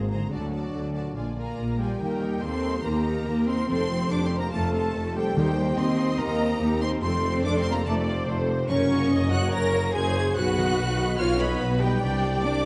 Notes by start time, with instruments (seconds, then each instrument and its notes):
Already playing: double bass section G#1, harp G#2 C4 G#4 A#4, cello section G#2, french horn section A#3 C4
0.11 harp D3, viola section G#4, violin section C5 A#5
0.17 harp D4
0.22 harp F#4
0.26 harp A4
0.31 double bass section D2, cello section D3, french horn section F#3 D4, viola section F#4, violin section D5 A5
0.51 viola section F#4, violin section D5 A5
0.73 double bass section D2, cello section D3
0.94 harp A#2, viola section F#4, violin section D5 A5
1.01 harp D4
1.06 harp F4
1.11 harp G#4
1.16 double bass section A#1, cello section A#2, french horn section G#3, viola section F4, violin section D5 G#5
1.37 cello section A#3, french horn section A#3, viola section F4, flute section A#4, violin section D5 G#5 A#5
1.58 double bass section A#1, cello section A#2
1.79 cello section G3, french horn section G3, viola section F4, flute section G4, violin section D5 G5 G#5
2.00 double bass section D#2, tuba D#2, harp D#3, violin section A#3 G4, viola section A#4
2.22 harp D#4, violin section D#4 A#4
2.42 double bass section D#2, tuba D#2, violin section A#3 G4 C6, french horn section C4, cello section C4, harp G4, viola section A4, flute section C5
2.63 violin section D#4 A#4, harp D#4
2.83 double bass section D#2, tuba D#2, cello section A#3, french horn section A#3, violin section A#3 G4 A#5, viola section G4, flute section A#4
3.04 violin section D#4 A#4, harp D#4
3.26 double bass section D#2, tuba D#2, violin section A#3 G4, harp G4, viola section A#4
3.46 cello section C4, french horn section C4, harp D#4, violin section D#4 A#4 C6, flute section C5
3.68 tuba F1, double bass section F2, harp F3, violin section A3 A4 C6, french horn section C4, cello section C4, viola section A4, flute section C5
3.89 violin section C4 C5, harp F4
4.10 tuba F1, double bass section F2, violin section A3 A4 D6, cello section D4, french horn section D4, viola section G4, harp A4, flute section D5
4.23 french horn section C4, cello section C4, flute section C5, violin section C6
4.31 violin section C4 C5, harp F4
4.38 french horn section A#3, cello section A#3, flute section A#4, violin section A#5
4.51 tuba F1, double bass section F2, violin section A3 A4 A5, french horn section A3, cello section A3, harp C4, viola section F4, flute section A4
4.71 french horn section A3, cello section A3, violin section C4 C5 A5, flute section A4
4.94 tuba F1, double bass section F2, violin section A3 A4, viola section A4, harp A4
5.15 cello section G3, french horn section G3, violin section C4 C5 G5, harp F4, flute section G4
5.36 tuba D#2, double bass section D#2, harp D#3, timpani D#3, violin section D#4 G4, viola section C5
5.57 harp C4, violin section C4 D#4
5.77 tuba D#2, double bass section D#2, french horn section C4, cello section C4, harp G4, flute section C5, viola section D#5, violin section C6
5.81 violin section D#4 G4
5.99 harp C4, violin section C4 D#4
6.18 tuba D#2, double bass section D#2, harp D#3, cello section A#3, french horn section A#3, violin section D#4 G4 A#5, flute section A#4
6.40 violin section C4 D#4, harp D#4
6.60 tuba D#2, double bass section D#2, violin section D#4 G4, harp G4, viola section G4
6.81 cello section C4, harp C4, violin section C4 D#4 C6, french horn section C4, flute section C5
7.01 tuba F1, harp F2, double bass section F2, violin section A3 A4 C6, cello section C4, french horn section C4, viola section A4, flute section C5
7.23 harp A3, violin section C4 C5
7.43 tuba F1, double bass section F2, violin section A3 A4 D6, cello section D4, french horn section D4, harp A4, flute section D5
7.56 cello section C4, french horn section C4, flute section C5, violin section C6
7.64 harp A3, violin section C4 C5
7.70 cello section A#3, french horn section A#3, flute section A#4, violin section A#5
7.85 tuba F1, double bass section F2, harp C3, cello section A3, french horn section A3, violin section A3 A4 A5, flute section A4, viola section D5
8.04 harp A3
8.09 violin section C4 C5
8.26 tuba F1, double bass section F2, violin section A3 A4, harp A4, viola section C5
8.47 harp A3, violin section C4 C5
8.68 tuba F#1, harp F#2, double bass section F#2, cello section C#4, french horn section C#4, violin section C#4 A#4 C#6, viola section A#4, flute section C#5
8.89 harp A#3, violin section A#3 C#5
9.11 tuba F#1, double bass section F#2, violin section C#4 A#4, harp F#4, viola section D#5
9.30 harp A#3, violin section A#3 C#5 F#6, french horn section F#4, cello section F#4, flute section F#5
9.50 tuba F#1, double bass section F#2, harp C#3, violin section C#4 A#4 A#6, cello section A#4, viola section C#5, flute section A#5
9.55 french horn section A#4
9.73 violin section A#3 C#5
9.93 tuba F#1, double bass section F#2, violin section C#4 A#4 G#6, harp F#4, cello section G#4, french horn section G#4, viola section C5, flute section G#5
10.15 harp A#3, violin section A#3 C#5
10.35 double bass section B1, tuba B1, harp B2, cello section F#4, violin section F#4 B4 F#6, french horn section F#4, viola section B4, flute section F#5
10.56 harp D#3, violin section D#4 D#5
10.78 double bass section B1, tuba B1, violin section F#4 B4
10.99 violin section D#4 D#5
11.18 tuba B1, double bass section B1, harp F#3, cello section F4, french horn section F4, violin section F#4 B4 F6, viola section C#5, flute section F5
11.39 cello section B3, french horn section B3, violin section D#4 D#5 B5, flute section B4
11.61 double bass section B1, tuba B1, harp F#4, violin section F#4 B4, viola section B4
11.81 french horn section G3, cello section G3, violin section D#4 D#5 G5, flute section G4
12.03 double bass section C2, tuba C2, harp C3, violin section D4 G4, viola section D5
12.24 harp C4
12.43 french horn section D4, violin section D4 G4 D6, cello section D4, harp G4, flute section D5